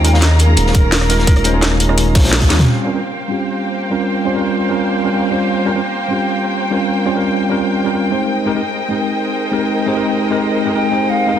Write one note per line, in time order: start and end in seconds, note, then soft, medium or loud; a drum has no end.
0.00 0.56 D#2 loud
0.00 0.09 G#3 loud
0.00 2.64 C#4 medium
0.00 0.09 C#4 medium
0.00 2.64 G#4 medium
0.00 2.64 F5 medium
0.00 0.15 G5 loud
0.00 2.64 A#5 loud
0.04 0.09 D#4 medium
0.04 0.09 F4 medium
0.04 0.10 A#4 loud
0.04 closed hi-hat medium
0.13 0.17 G#3 medium
0.13 0.18 C#4 medium
0.13 0.18 D#4 medium
0.13 0.18 F4 medium
0.13 0.18 A#4 loud
0.13 0.22 F5 loud
0.13 snare medium
0.21 0.41 D#5 loud
0.21 snare loud
0.21 closed hi-hat medium
0.21 closed hi-hat loud
0.31 cross-stick soft
0.39 2.33 A#4 loud
0.39 closed hi-hat medium
0.46 1.07 G#3 medium
0.46 1.07 C#4 medium
0.46 1.08 D#4 medium
0.46 1.08 F4 medium
0.46 1.09 G#4 medium
0.57 2.14 D#1 medium
0.57 closed hi-hat medium
0.57 closed hi-hat loud
0.67 snare soft
0.74 kick loud
0.74 closed hi-hat medium
0.92 snare loud
0.92 closed hi-hat medium
0.92 closed hi-hat loud
1.01 cross-stick medium
1.01 closed hi-hat soft
1.09 1.42 G#3 loud
1.09 1.43 C#4 medium
1.09 1.43 D#4 medium
1.09 1.43 F4 medium
1.09 1.43 A#4 loud
1.09 snare soft
1.09 closed hi-hat medium
1.19 snare soft
1.27 kick loud
1.27 closed hi-hat loud
1.27 closed hi-hat medium
1.36 cross-stick soft
1.36 closed hi-hat soft
1.44 1.51 G#3 loud
1.44 1.52 C#4 medium
1.44 1.52 D#4 medium
1.44 1.52 F4 medium
1.44 1.52 C5 loud
1.44 closed hi-hat medium
1.53 1.86 G#3 medium
1.53 1.87 C#4 medium
1.53 1.87 D#4 medium
1.53 1.87 F4 medium
1.53 1.87 A#4 loud
1.62 snare loud
1.62 closed hi-hat medium
1.62 closed hi-hat loud
1.72 cross-stick soft
1.80 closed hi-hat medium
1.88 2.22 G#3 loud
1.88 2.22 C#4 medium
1.88 2.22 D#4 medium
1.88 2.23 F4 medium
1.88 2.23 A#4 loud
1.88 cross-stick soft
1.98 closed hi-hat medium
1.98 closed hi-hat loud
2.15 2.49 A#1 medium
2.15 kick loud
2.15 snare medium
2.15 closed hi-hat medium
2.20 2.48 G#3 medium
2.20 2.48 C#4 medium
2.20 snare loud
2.20 closed hi-hat medium
2.24 2.48 D#4 medium
2.24 2.48 F4 medium
2.24 2.49 C5 loud
2.24 snare medium
2.24 closed hi-hat medium
2.28 snare medium
2.28 closed hi-hat medium
2.33 snare loud
2.33 closed hi-hat loud
2.41 kick medium
2.41 snare loud
2.41 closed hi-hat medium
2.49 2.66 D#2 medium
2.49 2.83 G3 medium
2.49 2.83 C4 medium
2.49 2.83 C#4 medium
2.49 2.83 F4 medium
2.49 2.84 G4 loud
2.49 snare medium
2.49 snare loud
2.49 closed hi-hat medium
2.59 snare loud
2.59 closed hi-hat medium
2.59 mid tom medium
2.67 8.25 A#3 medium
2.67 8.25 C5 medium
2.67 8.25 F5 medium
2.67 11.39 G5 medium
2.84 2.89 G3 medium
2.84 2.90 C4 medium
2.84 2.90 C#4 medium
2.84 2.90 F4 medium
2.84 2.90 A#4 loud
2.93 2.98 G3 medium
2.93 2.98 C4 medium
2.93 2.98 C#4 medium
2.93 2.99 F4 medium
2.93 2.99 A#4 medium
3.28 3.88 G3 medium
3.28 3.88 C4 medium
3.28 3.89 C#4 medium
3.28 3.89 F4 medium
3.28 3.90 G4 medium
3.90 4.23 G3 medium
3.90 4.23 C4 medium
3.90 4.24 C#4 medium
3.90 4.24 F4 medium
3.90 4.24 A#4 medium
4.25 4.32 G3 medium
4.25 4.32 C4 medium
4.25 4.33 C#4 medium
4.25 4.33 F4 medium
4.25 4.33 C5 loud
4.34 4.67 G3 medium
4.34 4.67 C4 medium
4.34 4.68 C#4 medium
4.34 4.68 F4 medium
4.34 4.68 A#4 medium
4.69 5.03 G3 medium
4.69 5.03 C4 medium
4.69 5.03 C#4 medium
4.69 5.03 F4 medium
4.69 5.04 A#4 medium
5.04 5.09 G3 medium
5.04 5.09 C4 medium
5.04 5.09 C#4 medium
5.04 5.09 F4 medium
5.04 5.10 A#4 medium
5.12 5.28 G3 medium
5.12 5.29 C4 medium
5.12 5.29 C#4 medium
5.12 5.29 F4 medium
5.12 5.29 A#4 medium
5.30 5.63 G3 medium
5.30 5.64 C4 medium
5.30 5.64 C#4 medium
5.30 5.64 F4 medium
5.30 5.64 C5 medium
5.65 5.70 G3 medium
5.65 5.70 C4 medium
5.65 5.71 C#4 medium
5.65 5.71 F4 medium
5.65 5.71 A#4 loud
5.74 5.79 G3 medium
5.74 5.79 C4 medium
5.74 5.79 C#4 medium
5.74 5.80 F4 medium
5.74 5.80 A#4 medium
6.08 6.68 G3 medium
6.08 6.69 C4 medium
6.08 6.69 C#4 medium
6.08 6.70 F4 medium
6.08 6.70 G4 medium
6.70 7.04 G3 medium
6.70 7.04 C4 medium
6.70 7.04 C#4 medium
6.70 7.05 F4 medium
6.70 7.05 A#4 medium
7.05 7.13 G3 medium
7.05 7.13 C4 medium
7.05 7.13 C#4 medium
7.05 7.13 F4 medium
7.05 7.14 C5 loud
7.14 7.48 G3 medium
7.14 7.48 C4 medium
7.14 7.48 C#4 medium
7.14 7.49 F4 medium
7.14 7.49 A#4 medium
7.49 7.83 G3 medium
7.49 7.83 C4 medium
7.49 7.84 C#4 medium
7.49 7.84 F4 medium
7.49 7.84 A#4 loud
7.84 7.89 G3 medium
7.84 7.89 C4 medium
7.84 7.90 C#4 medium
7.84 7.90 F4 medium
7.84 7.90 A#4 medium
7.93 8.09 G3 medium
7.93 8.09 C4 medium
7.93 8.09 C#4 medium
7.93 8.10 F4 medium
7.93 8.10 A#4 medium
8.10 8.44 G#3 medium
8.10 8.44 C4 medium
8.10 8.45 D#4 medium
8.10 8.45 G4 medium
8.10 8.45 C5 medium
8.29 11.39 G#3 medium
8.29 11.39 A#4 medium
8.29 11.39 C5 medium
8.29 11.39 D#5 medium
8.45 8.51 G#3 medium
8.45 8.51 C4 medium
8.45 8.51 D#4 medium
8.45 8.51 G4 medium
8.45 8.52 A#4 loud
8.55 8.59 G#3 medium
8.55 8.60 C4 medium
8.55 8.60 D#4 medium
8.55 8.60 G4 medium
8.55 8.60 A#4 medium
8.89 9.49 G#3 medium
8.89 9.49 C4 medium
8.89 9.50 D#4 medium
8.89 9.50 G4 medium
8.89 9.51 A#4 medium
9.51 9.85 G#3 medium
9.51 9.85 C4 medium
9.51 9.85 D#4 medium
9.51 9.85 G4 medium
9.51 9.85 A#4 medium
9.86 9.93 G#3 medium
9.86 9.94 C4 medium
9.86 9.94 D#4 medium
9.86 9.94 G4 medium
9.86 9.94 C5 loud
9.95 10.29 G#3 medium
9.95 10.29 C4 medium
9.95 10.29 D#4 medium
9.95 10.29 G4 medium
9.95 10.30 A#4 loud
10.30 10.64 G#3 medium
10.30 10.64 C4 medium
10.30 10.64 D#4 medium
10.30 10.65 G4 medium
10.30 10.65 A#4 loud
10.65 10.70 G#3 medium
10.65 10.70 C4 medium
10.65 10.70 D#4 medium
10.65 10.71 G4 medium
10.65 10.71 A#4 medium
10.74 10.90 G#3 medium
10.74 10.90 C4 medium
10.74 10.90 D#4 medium
10.74 10.91 G4 medium
10.74 10.91 A#4 medium
10.74 11.11 G5 loud
10.91 11.25 G#3 medium
10.91 11.25 C4 medium
10.91 11.25 D#4 medium
10.91 11.26 G4 medium
10.91 11.26 C5 medium
11.10 11.39 F5 loud
11.26 11.31 G#3 medium
11.26 11.32 C4 medium
11.26 11.32 D#4 medium
11.26 11.32 G4 medium
11.26 11.32 A#4 loud
11.35 11.39 G#3 medium
11.35 11.39 C4 medium
11.35 11.39 D#4 medium